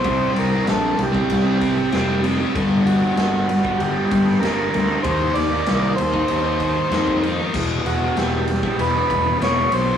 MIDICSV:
0, 0, Header, 1, 6, 480
1, 0, Start_track
1, 0, Tempo, 624350
1, 38, Time_signature, 4, 2, 24, 8
1, 7669, End_track
2, 0, Start_track
2, 0, Title_t, "Transistor combo organ"
2, 0, Program_c, 0, 18
2, 0, Note_on_c, 0, 72, 109
2, 255, Note_off_c, 0, 72, 0
2, 297, Note_on_c, 0, 70, 96
2, 512, Note_off_c, 0, 70, 0
2, 540, Note_on_c, 0, 69, 98
2, 777, Note_off_c, 0, 69, 0
2, 786, Note_on_c, 0, 67, 94
2, 1703, Note_off_c, 0, 67, 0
2, 2199, Note_on_c, 0, 66, 79
2, 2902, Note_on_c, 0, 67, 100
2, 2941, Note_off_c, 0, 66, 0
2, 3380, Note_on_c, 0, 70, 93
2, 3406, Note_off_c, 0, 67, 0
2, 3839, Note_off_c, 0, 70, 0
2, 3865, Note_on_c, 0, 72, 109
2, 4103, Note_on_c, 0, 74, 108
2, 4119, Note_off_c, 0, 72, 0
2, 4560, Note_off_c, 0, 74, 0
2, 4581, Note_on_c, 0, 72, 102
2, 5518, Note_off_c, 0, 72, 0
2, 6042, Note_on_c, 0, 66, 89
2, 6278, Note_on_c, 0, 67, 87
2, 6286, Note_off_c, 0, 66, 0
2, 6766, Note_on_c, 0, 71, 114
2, 6771, Note_off_c, 0, 67, 0
2, 7210, Note_off_c, 0, 71, 0
2, 7248, Note_on_c, 0, 73, 97
2, 7481, Note_on_c, 0, 72, 108
2, 7488, Note_off_c, 0, 73, 0
2, 7669, Note_off_c, 0, 72, 0
2, 7669, End_track
3, 0, Start_track
3, 0, Title_t, "Distorted electric guitar"
3, 0, Program_c, 1, 30
3, 26, Note_on_c, 1, 48, 88
3, 38, Note_on_c, 1, 55, 96
3, 52, Note_on_c, 1, 60, 110
3, 383, Note_off_c, 1, 60, 0
3, 393, Note_on_c, 1, 60, 72
3, 413, Note_off_c, 1, 55, 0
3, 416, Note_on_c, 1, 55, 60
3, 498, Note_off_c, 1, 48, 0
3, 507, Note_on_c, 1, 48, 94
3, 518, Note_off_c, 1, 55, 0
3, 522, Note_on_c, 1, 55, 99
3, 526, Note_off_c, 1, 60, 0
3, 535, Note_on_c, 1, 60, 116
3, 745, Note_off_c, 1, 48, 0
3, 748, Note_off_c, 1, 60, 0
3, 750, Note_off_c, 1, 55, 0
3, 858, Note_on_c, 1, 60, 69
3, 885, Note_on_c, 1, 55, 63
3, 1086, Note_off_c, 1, 60, 0
3, 1095, Note_on_c, 1, 60, 80
3, 1117, Note_off_c, 1, 55, 0
3, 1120, Note_on_c, 1, 55, 58
3, 1217, Note_on_c, 1, 48, 72
3, 1228, Note_off_c, 1, 55, 0
3, 1231, Note_on_c, 1, 55, 82
3, 1233, Note_off_c, 1, 60, 0
3, 1242, Note_on_c, 1, 60, 85
3, 1330, Note_off_c, 1, 60, 0
3, 1341, Note_off_c, 1, 55, 0
3, 1442, Note_off_c, 1, 48, 0
3, 1451, Note_on_c, 1, 48, 86
3, 1469, Note_on_c, 1, 55, 103
3, 1477, Note_on_c, 1, 60, 103
3, 1688, Note_off_c, 1, 48, 0
3, 1697, Note_on_c, 1, 48, 79
3, 1712, Note_off_c, 1, 55, 0
3, 1712, Note_off_c, 1, 60, 0
3, 1715, Note_on_c, 1, 55, 87
3, 1721, Note_on_c, 1, 60, 87
3, 1808, Note_off_c, 1, 60, 0
3, 1817, Note_on_c, 1, 60, 81
3, 1841, Note_off_c, 1, 55, 0
3, 1844, Note_on_c, 1, 55, 66
3, 1934, Note_off_c, 1, 48, 0
3, 1934, Note_off_c, 1, 60, 0
3, 1936, Note_on_c, 1, 43, 99
3, 1949, Note_on_c, 1, 50, 108
3, 1955, Note_off_c, 1, 55, 0
3, 1958, Note_on_c, 1, 55, 101
3, 2305, Note_off_c, 1, 55, 0
3, 2308, Note_on_c, 1, 55, 77
3, 2326, Note_off_c, 1, 50, 0
3, 2336, Note_on_c, 1, 50, 65
3, 2418, Note_off_c, 1, 43, 0
3, 2427, Note_on_c, 1, 43, 108
3, 2428, Note_off_c, 1, 50, 0
3, 2437, Note_on_c, 1, 50, 104
3, 2446, Note_off_c, 1, 55, 0
3, 2449, Note_on_c, 1, 55, 117
3, 2665, Note_off_c, 1, 43, 0
3, 2666, Note_off_c, 1, 50, 0
3, 2672, Note_off_c, 1, 55, 0
3, 2788, Note_on_c, 1, 55, 73
3, 2812, Note_on_c, 1, 50, 63
3, 3017, Note_off_c, 1, 55, 0
3, 3020, Note_on_c, 1, 55, 74
3, 3040, Note_off_c, 1, 50, 0
3, 3049, Note_on_c, 1, 50, 63
3, 3137, Note_on_c, 1, 43, 70
3, 3146, Note_off_c, 1, 50, 0
3, 3156, Note_on_c, 1, 50, 77
3, 3160, Note_off_c, 1, 55, 0
3, 3163, Note_on_c, 1, 55, 88
3, 3268, Note_off_c, 1, 50, 0
3, 3271, Note_off_c, 1, 55, 0
3, 3376, Note_off_c, 1, 43, 0
3, 3385, Note_on_c, 1, 43, 91
3, 3399, Note_on_c, 1, 50, 93
3, 3407, Note_on_c, 1, 55, 110
3, 3621, Note_off_c, 1, 43, 0
3, 3630, Note_on_c, 1, 43, 75
3, 3636, Note_off_c, 1, 50, 0
3, 3646, Note_on_c, 1, 50, 82
3, 3655, Note_off_c, 1, 55, 0
3, 3658, Note_on_c, 1, 55, 93
3, 3743, Note_off_c, 1, 55, 0
3, 3746, Note_on_c, 1, 55, 70
3, 3765, Note_off_c, 1, 50, 0
3, 3774, Note_on_c, 1, 50, 64
3, 3860, Note_off_c, 1, 43, 0
3, 3864, Note_off_c, 1, 50, 0
3, 3868, Note_on_c, 1, 51, 90
3, 3880, Note_off_c, 1, 55, 0
3, 3883, Note_on_c, 1, 58, 105
3, 3891, Note_on_c, 1, 63, 102
3, 4216, Note_off_c, 1, 63, 0
3, 4225, Note_on_c, 1, 63, 78
3, 4245, Note_off_c, 1, 58, 0
3, 4254, Note_on_c, 1, 58, 65
3, 4344, Note_off_c, 1, 51, 0
3, 4353, Note_on_c, 1, 51, 93
3, 4361, Note_off_c, 1, 58, 0
3, 4365, Note_off_c, 1, 63, 0
3, 4370, Note_on_c, 1, 58, 106
3, 4374, Note_on_c, 1, 63, 104
3, 4576, Note_off_c, 1, 51, 0
3, 4582, Note_off_c, 1, 58, 0
3, 4590, Note_off_c, 1, 63, 0
3, 4709, Note_on_c, 1, 63, 74
3, 4729, Note_on_c, 1, 58, 64
3, 4936, Note_off_c, 1, 63, 0
3, 4946, Note_on_c, 1, 63, 79
3, 4964, Note_off_c, 1, 58, 0
3, 4974, Note_on_c, 1, 58, 64
3, 5067, Note_on_c, 1, 51, 70
3, 5073, Note_off_c, 1, 58, 0
3, 5082, Note_on_c, 1, 58, 77
3, 5084, Note_off_c, 1, 63, 0
3, 5093, Note_on_c, 1, 63, 85
3, 5182, Note_off_c, 1, 63, 0
3, 5190, Note_off_c, 1, 58, 0
3, 5292, Note_off_c, 1, 51, 0
3, 5302, Note_on_c, 1, 51, 86
3, 5314, Note_on_c, 1, 58, 90
3, 5326, Note_on_c, 1, 63, 98
3, 5537, Note_off_c, 1, 51, 0
3, 5546, Note_on_c, 1, 51, 70
3, 5554, Note_off_c, 1, 58, 0
3, 5561, Note_off_c, 1, 63, 0
3, 5563, Note_on_c, 1, 58, 76
3, 5571, Note_on_c, 1, 63, 90
3, 5664, Note_off_c, 1, 63, 0
3, 5673, Note_on_c, 1, 63, 72
3, 5682, Note_off_c, 1, 58, 0
3, 5692, Note_on_c, 1, 58, 60
3, 5777, Note_off_c, 1, 51, 0
3, 5781, Note_off_c, 1, 63, 0
3, 5781, Note_on_c, 1, 40, 99
3, 5790, Note_off_c, 1, 58, 0
3, 5797, Note_on_c, 1, 47, 93
3, 5806, Note_on_c, 1, 52, 105
3, 6124, Note_off_c, 1, 52, 0
3, 6133, Note_on_c, 1, 52, 76
3, 6157, Note_off_c, 1, 47, 0
3, 6166, Note_on_c, 1, 47, 68
3, 6255, Note_off_c, 1, 40, 0
3, 6264, Note_on_c, 1, 40, 100
3, 6270, Note_off_c, 1, 47, 0
3, 6279, Note_on_c, 1, 47, 96
3, 6281, Note_off_c, 1, 52, 0
3, 6291, Note_on_c, 1, 52, 117
3, 6500, Note_off_c, 1, 40, 0
3, 6508, Note_off_c, 1, 47, 0
3, 6509, Note_off_c, 1, 52, 0
3, 6631, Note_on_c, 1, 52, 72
3, 6658, Note_on_c, 1, 47, 64
3, 6860, Note_off_c, 1, 52, 0
3, 6870, Note_on_c, 1, 52, 79
3, 6887, Note_off_c, 1, 47, 0
3, 6896, Note_on_c, 1, 47, 61
3, 6992, Note_on_c, 1, 40, 77
3, 6995, Note_off_c, 1, 47, 0
3, 7004, Note_on_c, 1, 47, 84
3, 7006, Note_off_c, 1, 52, 0
3, 7015, Note_on_c, 1, 52, 75
3, 7101, Note_off_c, 1, 52, 0
3, 7111, Note_off_c, 1, 47, 0
3, 7202, Note_off_c, 1, 40, 0
3, 7211, Note_on_c, 1, 40, 90
3, 7228, Note_on_c, 1, 47, 102
3, 7238, Note_on_c, 1, 52, 98
3, 7450, Note_off_c, 1, 40, 0
3, 7459, Note_on_c, 1, 40, 85
3, 7465, Note_off_c, 1, 47, 0
3, 7474, Note_on_c, 1, 47, 79
3, 7477, Note_off_c, 1, 52, 0
3, 7486, Note_on_c, 1, 52, 87
3, 7570, Note_off_c, 1, 52, 0
3, 7580, Note_on_c, 1, 52, 79
3, 7598, Note_off_c, 1, 47, 0
3, 7607, Note_on_c, 1, 47, 56
3, 7669, Note_off_c, 1, 40, 0
3, 7669, Note_off_c, 1, 47, 0
3, 7669, Note_off_c, 1, 52, 0
3, 7669, End_track
4, 0, Start_track
4, 0, Title_t, "Picked electric bass"
4, 0, Program_c, 2, 34
4, 37, Note_on_c, 2, 36, 106
4, 218, Note_off_c, 2, 36, 0
4, 271, Note_on_c, 2, 36, 93
4, 454, Note_off_c, 2, 36, 0
4, 517, Note_on_c, 2, 34, 92
4, 698, Note_off_c, 2, 34, 0
4, 761, Note_on_c, 2, 36, 90
4, 940, Note_off_c, 2, 36, 0
4, 1003, Note_on_c, 2, 36, 94
4, 1361, Note_off_c, 2, 36, 0
4, 1485, Note_on_c, 2, 29, 90
4, 1843, Note_off_c, 2, 29, 0
4, 1964, Note_on_c, 2, 31, 96
4, 2142, Note_off_c, 2, 31, 0
4, 2209, Note_on_c, 2, 31, 87
4, 2385, Note_off_c, 2, 31, 0
4, 2449, Note_on_c, 2, 31, 90
4, 2805, Note_off_c, 2, 31, 0
4, 2932, Note_on_c, 2, 31, 91
4, 3107, Note_off_c, 2, 31, 0
4, 3171, Note_on_c, 2, 31, 91
4, 3346, Note_off_c, 2, 31, 0
4, 3411, Note_on_c, 2, 31, 87
4, 3587, Note_off_c, 2, 31, 0
4, 3653, Note_on_c, 2, 38, 94
4, 3828, Note_off_c, 2, 38, 0
4, 3881, Note_on_c, 2, 39, 100
4, 4060, Note_off_c, 2, 39, 0
4, 4128, Note_on_c, 2, 39, 91
4, 4304, Note_off_c, 2, 39, 0
4, 4368, Note_on_c, 2, 36, 91
4, 4544, Note_off_c, 2, 36, 0
4, 4605, Note_on_c, 2, 39, 91
4, 4782, Note_off_c, 2, 39, 0
4, 4845, Note_on_c, 2, 39, 97
4, 5201, Note_off_c, 2, 39, 0
4, 5313, Note_on_c, 2, 41, 94
4, 5673, Note_off_c, 2, 41, 0
4, 5799, Note_on_c, 2, 28, 99
4, 5978, Note_off_c, 2, 28, 0
4, 6036, Note_on_c, 2, 28, 95
4, 6216, Note_off_c, 2, 28, 0
4, 6277, Note_on_c, 2, 28, 91
4, 6635, Note_off_c, 2, 28, 0
4, 6749, Note_on_c, 2, 28, 93
4, 6931, Note_off_c, 2, 28, 0
4, 7001, Note_on_c, 2, 28, 85
4, 7178, Note_off_c, 2, 28, 0
4, 7232, Note_on_c, 2, 28, 98
4, 7413, Note_off_c, 2, 28, 0
4, 7470, Note_on_c, 2, 35, 90
4, 7652, Note_off_c, 2, 35, 0
4, 7669, End_track
5, 0, Start_track
5, 0, Title_t, "Muted distorted electric guitar strokes"
5, 753, Note_on_c, 9, 29, 47
5, 830, Note_off_c, 9, 29, 0
5, 1339, Note_on_c, 9, 29, 59
5, 1416, Note_off_c, 9, 29, 0
5, 2674, Note_on_c, 9, 29, 46
5, 2751, Note_off_c, 9, 29, 0
5, 3274, Note_on_c, 9, 29, 56
5, 3351, Note_off_c, 9, 29, 0
5, 4586, Note_on_c, 9, 29, 47
5, 4662, Note_off_c, 9, 29, 0
5, 5191, Note_on_c, 9, 29, 55
5, 5268, Note_off_c, 9, 29, 0
5, 6509, Note_on_c, 9, 29, 44
5, 6586, Note_off_c, 9, 29, 0
5, 7110, Note_on_c, 9, 29, 50
5, 7187, Note_off_c, 9, 29, 0
5, 7669, End_track
6, 0, Start_track
6, 0, Title_t, "Drums"
6, 32, Note_on_c, 9, 51, 116
6, 35, Note_on_c, 9, 36, 122
6, 109, Note_off_c, 9, 51, 0
6, 112, Note_off_c, 9, 36, 0
6, 278, Note_on_c, 9, 51, 71
6, 355, Note_off_c, 9, 51, 0
6, 515, Note_on_c, 9, 51, 100
6, 522, Note_on_c, 9, 38, 112
6, 592, Note_off_c, 9, 51, 0
6, 598, Note_off_c, 9, 38, 0
6, 758, Note_on_c, 9, 51, 78
6, 835, Note_off_c, 9, 51, 0
6, 881, Note_on_c, 9, 36, 92
6, 957, Note_off_c, 9, 36, 0
6, 997, Note_on_c, 9, 51, 106
6, 1074, Note_off_c, 9, 51, 0
6, 1240, Note_on_c, 9, 51, 81
6, 1242, Note_on_c, 9, 36, 91
6, 1316, Note_off_c, 9, 51, 0
6, 1318, Note_off_c, 9, 36, 0
6, 1478, Note_on_c, 9, 51, 98
6, 1484, Note_on_c, 9, 38, 120
6, 1555, Note_off_c, 9, 51, 0
6, 1561, Note_off_c, 9, 38, 0
6, 1721, Note_on_c, 9, 51, 76
6, 1798, Note_off_c, 9, 51, 0
6, 1964, Note_on_c, 9, 51, 98
6, 1965, Note_on_c, 9, 36, 123
6, 2040, Note_off_c, 9, 51, 0
6, 2041, Note_off_c, 9, 36, 0
6, 2203, Note_on_c, 9, 51, 68
6, 2280, Note_off_c, 9, 51, 0
6, 2439, Note_on_c, 9, 51, 96
6, 2445, Note_on_c, 9, 38, 107
6, 2516, Note_off_c, 9, 51, 0
6, 2522, Note_off_c, 9, 38, 0
6, 2683, Note_on_c, 9, 51, 84
6, 2760, Note_off_c, 9, 51, 0
6, 2804, Note_on_c, 9, 36, 93
6, 2880, Note_off_c, 9, 36, 0
6, 2922, Note_on_c, 9, 51, 100
6, 2999, Note_off_c, 9, 51, 0
6, 3162, Note_on_c, 9, 51, 79
6, 3164, Note_on_c, 9, 36, 96
6, 3239, Note_off_c, 9, 51, 0
6, 3241, Note_off_c, 9, 36, 0
6, 3291, Note_on_c, 9, 38, 37
6, 3368, Note_off_c, 9, 38, 0
6, 3403, Note_on_c, 9, 51, 104
6, 3409, Note_on_c, 9, 38, 112
6, 3480, Note_off_c, 9, 51, 0
6, 3486, Note_off_c, 9, 38, 0
6, 3644, Note_on_c, 9, 51, 74
6, 3721, Note_off_c, 9, 51, 0
6, 3876, Note_on_c, 9, 51, 113
6, 3881, Note_on_c, 9, 36, 113
6, 3953, Note_off_c, 9, 51, 0
6, 3958, Note_off_c, 9, 36, 0
6, 4115, Note_on_c, 9, 51, 75
6, 4121, Note_on_c, 9, 38, 30
6, 4192, Note_off_c, 9, 51, 0
6, 4198, Note_off_c, 9, 38, 0
6, 4354, Note_on_c, 9, 51, 111
6, 4360, Note_on_c, 9, 38, 112
6, 4431, Note_off_c, 9, 51, 0
6, 4437, Note_off_c, 9, 38, 0
6, 4598, Note_on_c, 9, 51, 81
6, 4675, Note_off_c, 9, 51, 0
6, 4718, Note_on_c, 9, 36, 86
6, 4795, Note_off_c, 9, 36, 0
6, 4829, Note_on_c, 9, 51, 102
6, 4906, Note_off_c, 9, 51, 0
6, 5073, Note_on_c, 9, 51, 81
6, 5077, Note_on_c, 9, 36, 93
6, 5150, Note_off_c, 9, 51, 0
6, 5153, Note_off_c, 9, 36, 0
6, 5316, Note_on_c, 9, 51, 107
6, 5322, Note_on_c, 9, 38, 112
6, 5393, Note_off_c, 9, 51, 0
6, 5399, Note_off_c, 9, 38, 0
6, 5439, Note_on_c, 9, 36, 80
6, 5516, Note_off_c, 9, 36, 0
6, 5561, Note_on_c, 9, 51, 72
6, 5638, Note_off_c, 9, 51, 0
6, 5796, Note_on_c, 9, 49, 107
6, 5797, Note_on_c, 9, 36, 120
6, 5873, Note_off_c, 9, 49, 0
6, 5874, Note_off_c, 9, 36, 0
6, 6042, Note_on_c, 9, 51, 65
6, 6119, Note_off_c, 9, 51, 0
6, 6277, Note_on_c, 9, 51, 88
6, 6283, Note_on_c, 9, 38, 108
6, 6354, Note_off_c, 9, 51, 0
6, 6360, Note_off_c, 9, 38, 0
6, 6516, Note_on_c, 9, 51, 75
6, 6593, Note_off_c, 9, 51, 0
6, 6637, Note_on_c, 9, 36, 95
6, 6713, Note_off_c, 9, 36, 0
6, 6758, Note_on_c, 9, 51, 104
6, 6835, Note_off_c, 9, 51, 0
6, 6996, Note_on_c, 9, 36, 91
6, 6999, Note_on_c, 9, 51, 84
6, 7073, Note_off_c, 9, 36, 0
6, 7076, Note_off_c, 9, 51, 0
6, 7240, Note_on_c, 9, 51, 106
6, 7246, Note_on_c, 9, 38, 113
6, 7316, Note_off_c, 9, 51, 0
6, 7323, Note_off_c, 9, 38, 0
6, 7471, Note_on_c, 9, 51, 81
6, 7548, Note_off_c, 9, 51, 0
6, 7669, End_track
0, 0, End_of_file